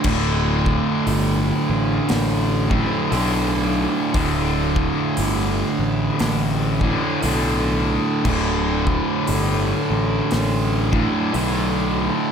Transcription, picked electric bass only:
X:1
M:4/4
L:1/8
Q:"Swing" 1/4=58
K:C
V:1 name="Picked electric bass" clef=bass
D,,,2 G,,, A,,, A,,,2 B,,,2 | D,,,2 G,,, A,,, A,,,2 B,,,2 | D,,,2 G,,, A,,, A,,,2 B,,,2 |]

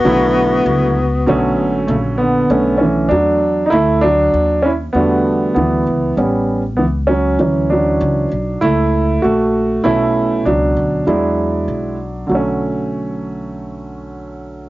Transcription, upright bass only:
X:1
M:4/4
L:1/8
Q:"Swing 16ths" 1/4=98
K:Bm
V:1 name="Upright bass" clef=bass
B,,,2 C,,2 B,,, ^G,,, ^A,,,2 | B,,,2 E,,2 D,,2 ^D,,2 | E,,2 D,, C,, A,,,2 C,,2 | D,,2 C,, B,,, C,,2 ^A,,,2 |
B,,,2 C,, D,, E,,2 B,,,2 | B,,,8 |]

